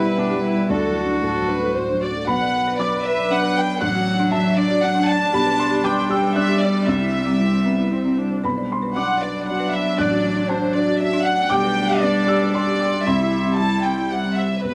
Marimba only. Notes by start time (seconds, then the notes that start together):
0.05 D5
0.18 B4
0.30 G4
0.44 B4
0.57 D5
0.70 D4
0.83 A4
0.96 F#4
1.10 D4
1.23 F#4
1.36 C5
1.49 D4
1.62 A4
1.75 F#4
1.89 D4
2.02 F#4
2.29 B4
2.41 D5
2.68 B4
2.81 D5
3.05 B4
3.19 D5
3.31 B5
3.45 B4
3.57 B5
3.69 B5
3.82 D4
3.95 F#4
4.20 D4
4.32 F#4
4.57 D4
4.70 F#4
4.82 D5
4.95 D4
5.07 D5
5.20 D5
5.33 G4
5.46 B4
5.71 G4
5.83 B4
6.09 G4
6.22 B4
6.35 G5
6.47 G4
6.61 G5
6.74 G5
6.86 C4
7.00 E4
7.27 C4
7.40 E4
7.65 C4
7.79 E4
7.92 C5
8.05 C4
8.17 C5
8.31 C5
8.44 B4
8.58 D5
8.82 B4
8.96 D5
9.22 B4
9.35 D5
9.47 B5
9.60 B4
9.72 B5
9.85 B5
9.98 D4
10.11 F#4
10.37 D4
10.50 F#4
10.74 D4
10.87 F#4
11.01 D5
11.13 D4
11.26 D5
11.38 D5
11.52 G4
11.64 B4
11.89 G4
12.02 B4
12.28 G4
12.41 B4
12.54 G5
12.67 G4
12.80 G5
12.93 G5
13.06 C4
13.20 E4
13.46 C4
13.59 E4
13.85 C4
13.98 E4
14.11 C5
14.24 C4
14.38 C5
14.51 C5
14.64 B4